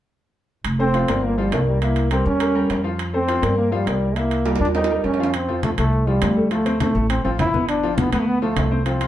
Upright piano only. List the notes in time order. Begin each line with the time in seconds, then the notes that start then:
0.79 A3 A4 C5
0.94 F3 F4 F5
1.08 A#3 A#4 D5
1.38 F3 F4 F5
1.52 A#3 A#4 D5
1.82 E3 E4 E5
2.11 G3 G4 A#4
2.40 G3 G4 A#4
2.55 G3 G4 A#4
2.84 F3 F4 F5
3.14 A3 A4 C5
3.28 F3 F4 F5
3.42 A#3 A#4 D5
3.72 F3 F4 F5
3.87 A#3 A#4 D5
4.16 E3 E4 E5
4.46 G3 G4 A#4
4.75 G3 G4 A#4
4.90 G3 G4 A#4
5.19 F3 F4 F5
5.48 F3 F4
5.78 A3 A4
6.07 F3 F4
6.37 A3 A4
6.51 F3 F4
6.66 C4 C5
6.95 A3 A4
7.25 F3 F4
7.54 B3 B4
7.83 F3 F4
8.13 B3 B4
8.42 F3 F4
8.71 C4 C5
8.86 F3 F4
9.01 F4 F5